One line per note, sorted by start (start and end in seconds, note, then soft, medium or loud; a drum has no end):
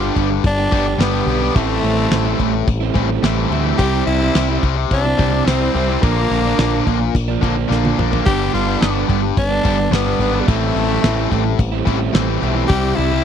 0.00 0.30 G2 medium
0.00 0.30 D3 medium
0.00 0.15 G3 medium
0.00 1.52 G3 medium
0.00 0.15 B3 medium
0.00 1.53 B3 medium
0.00 0.15 D4 medium
0.00 1.52 D4 medium
0.00 0.16 D4 medium
0.00 0.16 F4 loud
0.00 0.17 G4 medium
0.00 1.53 B4 medium
0.04 0.16 G3 medium
0.04 0.16 B3 medium
0.15 0.38 G1 medium
0.15 0.31 G3 medium
0.15 0.30 B3 medium
0.15 0.29 D4 medium
0.15 0.30 G4 medium
0.15 muted overdriven electric guitar stroke soft
0.15 kick medium
0.15 crash medium
0.30 muted distorted electric guitar stroke soft
0.44 0.66 G1 loud
0.44 1.03 D4 loud
0.44 kick loud
0.44 crash medium
0.58 0.71 G3 medium
0.58 0.71 B3 medium
0.58 0.72 D4 medium
0.58 0.74 G4 medium
0.72 0.94 G1 medium
0.72 1.00 G3 medium
0.72 1.00 B3 medium
0.72 1.00 D4 medium
0.72 1.01 G4 medium
0.72 kick loud
0.72 crash medium
0.86 muted distorted electric guitar stroke medium
0.98 1.21 G1 medium
0.98 1.41 G2 loud
0.98 1.42 D3 loud
0.98 1.15 G3 loud
0.98 1.14 B3 loud
0.98 1.57 B3 medium
0.98 1.13 D4 loud
0.98 1.13 G4 loud
0.98 snare loud
0.98 crash medium
1.13 1.27 G3 medium
1.13 1.27 B3 medium
1.13 1.28 D4 medium
1.13 1.29 G4 medium
1.26 1.49 B1 medium
1.26 1.43 G3 medium
1.26 1.42 B3 medium
1.26 1.41 D4 medium
1.26 1.41 G4 medium
1.26 crash medium
1.41 1.56 G3 medium
1.41 1.55 B3 medium
1.41 1.54 D4 medium
1.41 1.58 G4 medium
1.55 1.78 A1 loud
1.55 2.10 A2 loud
1.55 1.83 E3 medium
1.55 2.67 A3 loud
1.55 1.83 A3 medium
1.55 3.76 C4 medium
1.55 1.85 C4 loud
1.55 3.77 E4 medium
1.55 1.86 E4 loud
1.55 kick loud
1.55 crash medium
1.83 2.05 A1 medium
1.83 2.11 E3 medium
1.83 1.99 A3 medium
1.83 1.99 C4 medium
1.83 1.97 E4 medium
1.83 crash medium
1.97 2.11 A3 medium
1.97 2.13 C4 medium
1.97 2.13 E4 medium
2.11 2.33 A1 medium
2.11 2.53 A2 medium
2.11 2.39 E3 medium
2.11 2.26 A3 medium
2.11 2.26 C4 medium
2.11 2.25 E4 loud
2.11 snare loud
2.11 crash medium
2.25 2.39 A3 medium
2.25 2.40 C4 medium
2.25 2.40 E4 medium
2.39 2.62 A1 medium
2.39 2.53 E3 medium
2.39 2.53 A3 medium
2.39 2.52 C4 medium
2.39 2.52 E4 medium
2.39 muted overdriven electric guitar stroke medium
2.39 kick medium
2.39 crash medium
2.53 muted distorted electric guitar stroke soft
2.67 2.89 A1 medium
2.67 kick loud
2.67 crash medium
2.81 2.95 A3 medium
2.81 2.96 C4 medium
2.81 2.96 E4 medium
2.95 3.17 A1 medium
2.95 3.23 E3 medium
2.95 3.23 A3 medium
2.95 3.24 C4 medium
2.95 3.24 E4 medium
2.95 kick medium
2.95 crash medium
3.09 muted distorted electric guitar stroke medium
3.23 3.45 A1 loud
3.23 3.65 A2 loud
3.23 3.49 E3 loud
3.23 3.37 A3 loud
3.23 3.36 C4 loud
3.23 3.35 E4 loud
3.23 snare loud
3.23 crash medium
3.36 3.50 A3 medium
3.36 3.51 C4 medium
3.36 3.52 E4 medium
3.50 3.73 D2 medium
3.50 3.77 E3 medium
3.50 3.67 A3 medium
3.50 3.65 C4 medium
3.50 3.64 E4 loud
3.50 crash medium
3.65 3.79 A3 medium
3.65 3.78 C4 medium
3.65 3.77 E4 medium
3.78 4.01 C2 medium
3.78 4.05 C3 medium
3.78 5.99 G3 medium
3.78 4.06 G3 medium
3.78 6.00 C4 medium
3.78 4.07 C4 loud
3.78 5.99 E4 medium
3.78 4.08 E4 loud
3.78 4.04 G4 loud
3.78 5.99 C5 medium
3.78 kick loud
3.78 crash medium
4.06 4.29 C2 medium
4.06 4.33 C3 medium
4.06 4.22 G3 medium
4.06 4.21 C4 medium
4.06 4.58 E4 loud
4.06 4.19 E4 medium
4.06 crash medium
4.21 4.34 G3 medium
4.21 4.35 C4 medium
4.21 4.35 E4 medium
4.34 4.57 C2 medium
4.34 4.62 C3 medium
4.34 4.50 G3 medium
4.34 4.49 C4 medium
4.34 4.48 E4 loud
4.34 snare loud
4.34 crash medium
4.49 4.62 G3 medium
4.49 4.63 C4 medium
4.49 4.63 E4 medium
4.62 4.85 C2 medium
4.62 5.04 C3 medium
4.62 4.76 G3 medium
4.62 4.76 C4 medium
4.62 4.75 E4 medium
4.62 muted overdriven electric guitar stroke soft
4.62 kick medium
4.62 crash medium
4.76 muted distorted electric guitar stroke medium
4.91 5.13 C2 loud
4.91 5.44 D4 loud
4.91 kick loud
4.91 crash medium
5.05 5.19 G3 soft
5.05 5.20 C4 medium
5.05 5.21 E4 medium
5.19 5.41 C2 medium
5.19 5.46 C3 medium
5.19 5.47 G3 medium
5.19 5.48 C4 medium
5.19 5.48 E4 medium
5.19 kick loud
5.19 crash medium
5.32 muted distorted electric guitar stroke medium
5.46 5.68 C2 medium
5.46 5.74 C3 loud
5.46 5.63 G3 loud
5.46 6.04 C4 medium
5.46 5.62 C4 loud
5.46 5.60 E4 loud
5.46 snare loud
5.46 crash medium
5.62 5.75 G3 medium
5.62 5.76 C4 medium
5.62 5.77 E4 medium
5.75 5.97 C2 loud
5.75 6.01 C3 medium
5.75 5.91 G3 medium
5.75 5.89 C4 medium
5.75 5.88 E4 medium
5.75 crash medium
5.89 6.02 G3 medium
5.89 6.01 C4 medium
5.89 6.01 E4 medium
6.01 6.25 A#1 medium
6.01 6.58 A#2 medium
6.01 6.30 D3 loud
6.01 8.22 F3 medium
6.01 6.31 F3 loud
6.01 8.22 A#3 medium
6.01 7.14 A#3 loud
6.01 6.32 A#3 loud
6.01 8.22 D4 medium
6.01 8.22 A#4 medium
6.01 kick loud
6.01 crash medium
6.06 6.33 D4 loud
6.30 6.52 A#1 medium
6.30 6.59 D3 medium
6.30 6.47 F3 medium
6.30 6.46 A#3 medium
6.30 6.45 D4 medium
6.30 crash medium
6.45 6.60 F3 medium
6.45 6.60 A#3 medium
6.45 6.62 D4 medium
6.58 6.80 A#1 medium
6.58 7.00 A#2 medium
6.58 6.86 D3 loud
6.58 6.75 F3 medium
6.58 6.74 A#3 medium
6.58 6.73 D4 loud
6.58 snare loud
6.58 crash medium
6.73 6.86 F3 medium
6.73 6.87 A#3 medium
6.73 6.88 D4 medium
6.86 7.09 A#1 medium
6.86 6.99 D3 medium
6.86 6.99 F3 medium
6.86 6.99 A#3 medium
6.86 6.99 D4 medium
6.86 muted overdriven electric guitar stroke soft
6.86 kick medium
6.86 crash medium
7.00 muted distorted electric guitar stroke medium
7.14 7.36 A#1 loud
7.14 kick loud
7.14 crash medium
7.28 7.42 F3 medium
7.28 7.43 A#3 medium
7.28 7.44 D4 medium
7.42 7.64 A#1 medium
7.42 7.70 D3 medium
7.42 7.70 F3 medium
7.42 7.71 A#3 medium
7.42 7.72 D4 medium
7.42 kick medium
7.42 crash medium
7.55 muted distorted electric guitar stroke soft
7.70 7.92 A#1 medium
7.70 8.11 A#2 loud
7.70 7.96 D3 loud
7.70 7.86 F3 loud
7.70 7.84 A#3 loud
7.70 7.83 D4 loud
7.70 snare medium
7.84 7.97 F3 medium
7.84 7.98 A#3 medium
7.84 7.99 D4 medium
7.84 high tom medium
7.97 8.20 A#1 medium
7.97 8.23 D3 medium
7.97 8.14 F3 medium
7.97 8.13 A#3 medium
7.97 8.11 D4 medium
7.97 mid tom medium
8.13 8.25 F3 medium
8.13 8.25 A#3 medium
8.13 8.24 D4 medium
8.13 floor tom medium
8.24 8.48 G1 medium
8.24 8.80 G2 loud
8.24 8.52 D3 loud
8.24 10.45 G3 medium
8.24 8.54 G3 loud
8.24 10.45 B3 medium
8.24 8.54 B3 loud
8.24 10.45 D4 medium
8.24 8.51 G4 loud
8.24 10.45 B4 medium
8.24 kick loud
8.24 crash medium
8.28 8.55 D4 loud
8.54 8.75 G1 medium
8.54 8.80 D3 medium
8.54 8.69 G3 medium
8.54 8.67 B3 medium
8.54 8.66 D4 medium
8.54 9.05 F4 loud
8.54 crash medium
8.67 8.82 G3 medium
8.67 8.81 B3 medium
8.67 8.82 D4 medium
8.81 9.03 G1 medium
8.81 9.22 G2 medium
8.81 9.07 D3 medium
8.81 8.97 G3 medium
8.81 8.95 B3 medium
8.81 8.93 D4 loud
8.81 snare loud
8.81 crash medium
8.95 9.08 G3 medium
8.95 9.07 B3 medium
8.95 9.07 D4 medium
9.07 9.31 G1 medium
9.07 9.22 D3 medium
9.07 9.23 G3 medium
9.07 9.21 B3 medium
9.07 9.21 D4 medium
9.07 muted overdriven electric guitar stroke soft
9.07 kick medium
9.07 crash medium
9.22 muted distorted electric guitar stroke medium
9.37 9.59 G1 loud
9.37 9.94 D4 loud
9.37 kick loud
9.37 crash medium
9.49 9.64 G3 soft
9.49 9.65 B3 medium
9.49 9.65 D4 medium
9.64 9.87 G1 medium
9.64 9.91 D3 medium
9.64 9.93 G3 medium
9.64 9.92 B3 medium
9.64 9.93 D4 medium
9.64 kick medium
9.64 crash medium
9.78 muted distorted electric guitar stroke medium
9.91 10.13 G1 medium
9.91 10.33 G2 loud
9.91 10.18 D3 loud
9.91 10.08 G3 loud
9.91 10.42 B3 loud
9.91 10.06 B3 loud
9.91 10.04 D4 loud
9.91 snare loud
9.91 crash medium
10.06 10.20 G3 medium
10.06 10.20 B3 medium
10.06 10.20 D4 medium
10.19 10.41 G#1 medium
10.19 10.46 D3 medium
10.19 10.35 G3 medium
10.19 10.33 B3 medium
10.19 10.32 D4 medium
10.19 crash medium
10.33 10.48 G3 soft
10.33 10.46 B3 medium
10.33 10.45 D4 medium
10.41 10.50 G3 medium
10.47 10.70 A1 loud
10.47 11.02 A2 medium
10.47 10.75 E3 loud
10.47 12.68 G3 medium
10.47 10.75 A3 loud
10.47 11.59 A3 loud
10.47 12.68 C4 medium
10.47 10.76 C4 loud
10.47 12.68 E4 medium
10.47 10.77 E4 loud
10.47 12.68 A4 medium
10.47 kick loud
10.47 crash medium
10.75 10.97 A1 medium
10.75 11.03 E3 medium
10.75 10.90 A3 medium
10.75 10.90 C4 medium
10.75 10.88 E4 medium
10.75 crash medium
10.89 11.03 A3 medium
10.89 11.05 C4 medium
10.89 11.05 E4 medium
11.03 11.26 A1 medium
11.03 11.45 A2 medium
11.03 11.30 E3 medium
11.03 11.18 A3 medium
11.03 11.17 C4 medium
11.03 11.16 E4 medium
11.03 snare loud
11.03 crash medium
11.16 11.30 A3 medium
11.16 11.31 C4 medium
11.16 11.31 E4 medium
11.30 11.53 A1 medium
11.30 11.44 E3 medium
11.30 11.44 A3 medium
11.30 11.43 C4 medium
11.30 11.43 E4 medium
11.30 muted overdriven electric guitar stroke soft
11.30 kick medium
11.30 crash medium
11.44 muted distorted electric guitar stroke medium
11.59 11.81 A1 loud
11.59 kick loud
11.59 crash medium
11.72 11.86 A3 medium
11.72 11.87 C4 medium
11.72 11.88 E4 medium
11.86 12.09 A1 loud
11.86 12.13 E3 medium
11.86 12.14 A3 medium
11.86 12.15 C4 medium
11.86 12.15 E4 medium
11.86 kick medium
11.86 crash medium
11.99 muted distorted electric guitar stroke soft
12.14 12.36 A1 medium
12.14 12.56 A2 loud
12.14 12.41 E3 loud
12.14 12.29 A3 loud
12.14 12.28 C4 loud
12.14 12.27 E4 loud
12.14 snare loud
12.14 crash medium
12.28 12.42 A3 medium
12.28 12.43 C4 medium
12.28 12.44 E4 medium
12.42 12.64 B1 medium
12.42 12.68 E3 medium
12.42 12.57 A3 medium
12.42 12.56 C4 medium
12.42 12.54 E4 medium
12.42 crash medium
12.55 12.69 A3 medium
12.55 12.69 C4 medium
12.55 12.68 E4 medium
12.68 12.92 C2 loud
12.68 12.96 C3 medium
12.68 13.24 G3 medium
12.68 12.97 G3 loud
12.68 13.24 C4 medium
12.68 12.98 C4 loud
12.68 12.98 E4 loud
12.68 12.97 G4 loud
12.68 kick loud
12.68 crash medium
12.96 13.20 C2 medium
12.96 13.24 C3 medium
12.96 13.12 G3 medium
12.96 13.11 C4 medium
12.96 13.24 E4 loud
12.96 13.10 E4 medium
12.96 crash medium
13.11 13.24 G3 medium
13.11 13.24 C4 medium
13.11 13.24 E4 medium